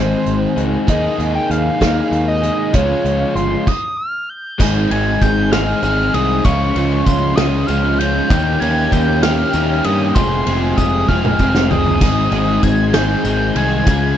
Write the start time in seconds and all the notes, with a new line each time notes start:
Already playing: G#1 G#2 D#3 G#3 C4 D#4 G#4 C5
0.00 G#2
0.26 G#1, closed hi-hat
0.56 C#2 G#2 D#3 G#3 C4 D#4 G#4, closed hi-hat
0.87 D#2 D#3 A#3 D#4 D#5, kick, closed hi-hat
0.91 G#4
1.19 D#2, closed hi-hat
1.35 G5
1.50 D#2 F5, closed hi-hat
1.80 D#2 D#3 A#3 D#4 G#4, kick, snare, closed hi-hat
2.12 D#2, closed hi-hat
2.28 D#5
2.42 D#3 A#3 D#4 G#4, closed hi-hat
2.73 C#2 C#3 F3 G#3 C#4 F4 C#5, kick, closed hi-hat
3.05 C#2, closed hi-hat
3.35 G1 C6, closed hi-hat
3.67 D#6, kick, crash
3.97 F6
4.29 G6
4.59 G#1 G#2 D#3 G#3 C4 D#4 G#4 G#5 C6, kick, crash, tambourine
4.90 G#1 G#2 D#3 G#3 C4 D#4 G#4 G#6, ride, tambourine
5.22 G#1 G6, kick, ride, tambourine
5.52 G#2 D#3 G#3 C4 D#4 G#4 F6, snare, ride
5.82 G#1 G#2 D#3 G#3 C4 D#4 G#4 F6, ride, tambourine
6.13 C2 G#2 D#3 G#3 C4 D#4 G#4 D#6, ride
6.44 C#2 C#3 F3 G#3 C#4 F4 C#5 F5 C#6, kick, ride, tambourine
6.75 C#2 C#3 F3 G#3 C#4 F4, ride, tambourine
7.06 C#2 C6, kick, ride, tambourine
7.35 C#2 C#3 F3 G#3 C#4 F4 D#6, snare, ride
7.66 C#2 C#3 F3 G#3 C#4 F4 F6, ride, tambourine
7.98 C#3 F3 G#3 C#4 F4 G6, ride
8.30 D#2 D#3 A#3 C#4 G4 D#5, kick, ride, tambourine
8.60 D#2 D#3 A#3 C#4 G4 G#6, ride, tambourine
8.92 D#2 G6, kick, ride, tambourine
9.23 D#3 A#3 C#4 G4 F6, snare, ride
9.53 D#2 D#3 A#3 C#4 G4, ride, tambourine
9.84 G2 D#3 A#3 C#4 G4 D#6, ride
10.14 F1 F2 C3 F3 G#3 C4 G#4 F5 C6 D#6, kick, ride, tambourine
10.31 tambourine
10.46 F1 F2 C3 F3 G#3 C4 G#4, ride, tambourine
10.77 F1 D#6, kick, ride, tambourine
11.08 F1 F2 C3 F3 G#3 C4 G#4 F6, kick, tambourine
11.25 high tom
11.38 F1 F2 C3 F3 G#3 C4 G#4 F6, kick, tambourine
11.55 snare
11.70 F2 C3 F3 G#3 C4 G#4 D#6, floor tom, tambourine
11.86 floor tom, tambourine
12.00 G#1 G#2 D#3 G#3 C4 D#4 G#4 G#5 C6, kick, crash, ride, tambourine
12.31 G#1 G#2 D#3 G#3 C4 D#4 G#4, ride, tambourine
12.63 G#1 G#6, kick, ride, tambourine
12.93 G#2 D#3 G#3 C4 D#4 G#4 G6, snare, ride
13.24 G#1 G#2 D#3 G#3 C4 D#4 G#4 G6, ride, tambourine
13.55 C2 G#2 D#3 G#3 C4 D#4 G#4 G#6, ride
13.86 C#2 C#3 G#3 C#4 F4 G#4 C#5 F5 C#6, kick, ride, tambourine